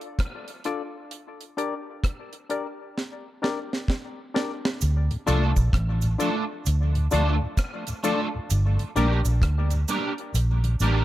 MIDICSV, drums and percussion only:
0, 0, Header, 1, 2, 480
1, 0, Start_track
1, 0, Key_signature, -2, "minor"
1, 0, Tempo, 921659
1, 581, Time_signature, 4, 2, 24, 8
1, 5752, End_track
2, 0, Start_track
2, 0, Title_t, "Drums"
2, 7, Note_on_c, 9, 42, 31
2, 59, Note_off_c, 9, 42, 0
2, 97, Note_on_c, 9, 36, 104
2, 98, Note_on_c, 9, 42, 74
2, 104, Note_on_c, 9, 37, 104
2, 150, Note_off_c, 9, 36, 0
2, 150, Note_off_c, 9, 42, 0
2, 156, Note_off_c, 9, 37, 0
2, 248, Note_on_c, 9, 42, 56
2, 301, Note_off_c, 9, 42, 0
2, 335, Note_on_c, 9, 42, 61
2, 343, Note_on_c, 9, 37, 55
2, 387, Note_off_c, 9, 42, 0
2, 395, Note_off_c, 9, 37, 0
2, 579, Note_on_c, 9, 42, 72
2, 631, Note_off_c, 9, 42, 0
2, 732, Note_on_c, 9, 42, 43
2, 784, Note_off_c, 9, 42, 0
2, 824, Note_on_c, 9, 42, 60
2, 876, Note_off_c, 9, 42, 0
2, 1061, Note_on_c, 9, 36, 111
2, 1062, Note_on_c, 9, 42, 91
2, 1064, Note_on_c, 9, 37, 105
2, 1113, Note_off_c, 9, 36, 0
2, 1114, Note_off_c, 9, 42, 0
2, 1116, Note_off_c, 9, 37, 0
2, 1212, Note_on_c, 9, 42, 50
2, 1264, Note_off_c, 9, 42, 0
2, 1302, Note_on_c, 9, 42, 61
2, 1354, Note_off_c, 9, 42, 0
2, 1550, Note_on_c, 9, 38, 50
2, 1602, Note_off_c, 9, 38, 0
2, 1792, Note_on_c, 9, 38, 68
2, 1844, Note_off_c, 9, 38, 0
2, 1943, Note_on_c, 9, 38, 59
2, 1995, Note_off_c, 9, 38, 0
2, 2023, Note_on_c, 9, 36, 102
2, 2030, Note_on_c, 9, 38, 80
2, 2075, Note_off_c, 9, 36, 0
2, 2082, Note_off_c, 9, 38, 0
2, 2271, Note_on_c, 9, 38, 79
2, 2324, Note_off_c, 9, 38, 0
2, 2423, Note_on_c, 9, 38, 86
2, 2475, Note_off_c, 9, 38, 0
2, 2506, Note_on_c, 9, 69, 80
2, 2509, Note_on_c, 9, 42, 78
2, 2558, Note_off_c, 9, 69, 0
2, 2561, Note_off_c, 9, 42, 0
2, 2660, Note_on_c, 9, 42, 45
2, 2712, Note_off_c, 9, 42, 0
2, 2747, Note_on_c, 9, 69, 57
2, 2752, Note_on_c, 9, 42, 72
2, 2799, Note_off_c, 9, 69, 0
2, 2804, Note_off_c, 9, 42, 0
2, 2897, Note_on_c, 9, 69, 74
2, 2898, Note_on_c, 9, 36, 69
2, 2898, Note_on_c, 9, 42, 36
2, 2949, Note_off_c, 9, 69, 0
2, 2950, Note_off_c, 9, 36, 0
2, 2950, Note_off_c, 9, 42, 0
2, 2985, Note_on_c, 9, 36, 115
2, 2988, Note_on_c, 9, 42, 95
2, 2990, Note_on_c, 9, 37, 116
2, 3037, Note_off_c, 9, 36, 0
2, 3040, Note_off_c, 9, 42, 0
2, 3043, Note_off_c, 9, 37, 0
2, 3132, Note_on_c, 9, 69, 57
2, 3137, Note_on_c, 9, 42, 53
2, 3184, Note_off_c, 9, 69, 0
2, 3189, Note_off_c, 9, 42, 0
2, 3228, Note_on_c, 9, 42, 72
2, 3229, Note_on_c, 9, 69, 75
2, 3280, Note_off_c, 9, 42, 0
2, 3281, Note_off_c, 9, 69, 0
2, 3468, Note_on_c, 9, 69, 71
2, 3471, Note_on_c, 9, 42, 90
2, 3520, Note_off_c, 9, 69, 0
2, 3524, Note_off_c, 9, 42, 0
2, 3621, Note_on_c, 9, 42, 49
2, 3673, Note_off_c, 9, 42, 0
2, 3703, Note_on_c, 9, 69, 59
2, 3716, Note_on_c, 9, 42, 69
2, 3756, Note_off_c, 9, 69, 0
2, 3768, Note_off_c, 9, 42, 0
2, 3945, Note_on_c, 9, 36, 104
2, 3945, Note_on_c, 9, 42, 90
2, 3946, Note_on_c, 9, 69, 70
2, 3951, Note_on_c, 9, 37, 117
2, 3997, Note_off_c, 9, 36, 0
2, 3997, Note_off_c, 9, 42, 0
2, 3998, Note_off_c, 9, 69, 0
2, 4003, Note_off_c, 9, 37, 0
2, 4097, Note_on_c, 9, 42, 65
2, 4101, Note_on_c, 9, 69, 61
2, 4149, Note_off_c, 9, 42, 0
2, 4153, Note_off_c, 9, 69, 0
2, 4186, Note_on_c, 9, 42, 64
2, 4187, Note_on_c, 9, 69, 76
2, 4238, Note_off_c, 9, 42, 0
2, 4240, Note_off_c, 9, 69, 0
2, 4428, Note_on_c, 9, 69, 76
2, 4429, Note_on_c, 9, 42, 84
2, 4480, Note_off_c, 9, 69, 0
2, 4481, Note_off_c, 9, 42, 0
2, 4579, Note_on_c, 9, 42, 47
2, 4631, Note_off_c, 9, 42, 0
2, 4666, Note_on_c, 9, 42, 61
2, 4670, Note_on_c, 9, 69, 60
2, 4719, Note_off_c, 9, 42, 0
2, 4722, Note_off_c, 9, 69, 0
2, 4817, Note_on_c, 9, 42, 39
2, 4818, Note_on_c, 9, 69, 71
2, 4869, Note_off_c, 9, 42, 0
2, 4870, Note_off_c, 9, 69, 0
2, 4904, Note_on_c, 9, 36, 115
2, 4909, Note_on_c, 9, 42, 95
2, 4911, Note_on_c, 9, 37, 111
2, 4956, Note_off_c, 9, 36, 0
2, 4961, Note_off_c, 9, 42, 0
2, 4963, Note_off_c, 9, 37, 0
2, 5054, Note_on_c, 9, 42, 53
2, 5056, Note_on_c, 9, 69, 62
2, 5106, Note_off_c, 9, 42, 0
2, 5108, Note_off_c, 9, 69, 0
2, 5146, Note_on_c, 9, 42, 75
2, 5147, Note_on_c, 9, 69, 79
2, 5198, Note_off_c, 9, 42, 0
2, 5199, Note_off_c, 9, 69, 0
2, 5302, Note_on_c, 9, 42, 34
2, 5354, Note_off_c, 9, 42, 0
2, 5388, Note_on_c, 9, 69, 72
2, 5392, Note_on_c, 9, 42, 94
2, 5440, Note_off_c, 9, 69, 0
2, 5444, Note_off_c, 9, 42, 0
2, 5541, Note_on_c, 9, 42, 57
2, 5593, Note_off_c, 9, 42, 0
2, 5623, Note_on_c, 9, 69, 57
2, 5636, Note_on_c, 9, 42, 75
2, 5675, Note_off_c, 9, 69, 0
2, 5688, Note_off_c, 9, 42, 0
2, 5752, End_track
0, 0, End_of_file